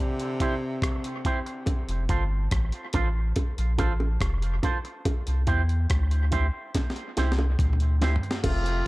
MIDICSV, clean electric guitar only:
0, 0, Header, 1, 3, 480
1, 0, Start_track
1, 0, Tempo, 846262
1, 947, Time_signature, 4, 2, 24, 8
1, 5033, End_track
2, 0, Start_track
2, 0, Title_t, "Clean electric guitar"
2, 0, Program_c, 0, 27
2, 230, Note_on_c, 0, 64, 78
2, 231, Note_on_c, 0, 67, 77
2, 235, Note_on_c, 0, 72, 75
2, 304, Note_off_c, 0, 64, 0
2, 305, Note_off_c, 0, 67, 0
2, 307, Note_off_c, 0, 72, 0
2, 711, Note_on_c, 0, 64, 76
2, 713, Note_on_c, 0, 67, 73
2, 716, Note_on_c, 0, 72, 79
2, 785, Note_off_c, 0, 64, 0
2, 786, Note_off_c, 0, 67, 0
2, 788, Note_off_c, 0, 72, 0
2, 1184, Note_on_c, 0, 65, 74
2, 1187, Note_on_c, 0, 69, 69
2, 1191, Note_on_c, 0, 72, 82
2, 1262, Note_off_c, 0, 65, 0
2, 1263, Note_off_c, 0, 69, 0
2, 1266, Note_off_c, 0, 72, 0
2, 1665, Note_on_c, 0, 65, 76
2, 1666, Note_on_c, 0, 69, 81
2, 1672, Note_on_c, 0, 72, 86
2, 1743, Note_off_c, 0, 65, 0
2, 1743, Note_off_c, 0, 69, 0
2, 1746, Note_off_c, 0, 72, 0
2, 2143, Note_on_c, 0, 65, 77
2, 2146, Note_on_c, 0, 69, 74
2, 2150, Note_on_c, 0, 72, 87
2, 2222, Note_off_c, 0, 65, 0
2, 2223, Note_off_c, 0, 69, 0
2, 2225, Note_off_c, 0, 72, 0
2, 2625, Note_on_c, 0, 65, 68
2, 2631, Note_on_c, 0, 69, 73
2, 2635, Note_on_c, 0, 72, 79
2, 2703, Note_off_c, 0, 65, 0
2, 2706, Note_off_c, 0, 69, 0
2, 2708, Note_off_c, 0, 72, 0
2, 3101, Note_on_c, 0, 64, 66
2, 3103, Note_on_c, 0, 67, 82
2, 3107, Note_on_c, 0, 72, 74
2, 3181, Note_off_c, 0, 64, 0
2, 3181, Note_off_c, 0, 67, 0
2, 3184, Note_off_c, 0, 72, 0
2, 3580, Note_on_c, 0, 64, 72
2, 3588, Note_on_c, 0, 67, 80
2, 3588, Note_on_c, 0, 72, 94
2, 3660, Note_off_c, 0, 64, 0
2, 3664, Note_off_c, 0, 67, 0
2, 3664, Note_off_c, 0, 72, 0
2, 4064, Note_on_c, 0, 64, 69
2, 4069, Note_on_c, 0, 67, 82
2, 4073, Note_on_c, 0, 72, 85
2, 4142, Note_off_c, 0, 64, 0
2, 4144, Note_off_c, 0, 67, 0
2, 4146, Note_off_c, 0, 72, 0
2, 4544, Note_on_c, 0, 64, 78
2, 4547, Note_on_c, 0, 67, 84
2, 4549, Note_on_c, 0, 72, 78
2, 4621, Note_off_c, 0, 64, 0
2, 4623, Note_off_c, 0, 67, 0
2, 4624, Note_off_c, 0, 72, 0
2, 5033, End_track
3, 0, Start_track
3, 0, Title_t, "Muted clean electric guitar strokes"
3, 829, Note_on_c, 9, 29, 49
3, 886, Note_off_c, 9, 29, 0
3, 2750, Note_on_c, 9, 29, 44
3, 2807, Note_off_c, 9, 29, 0
3, 4668, Note_on_c, 9, 29, 43
3, 4724, Note_off_c, 9, 29, 0
3, 5033, End_track
0, 0, End_of_file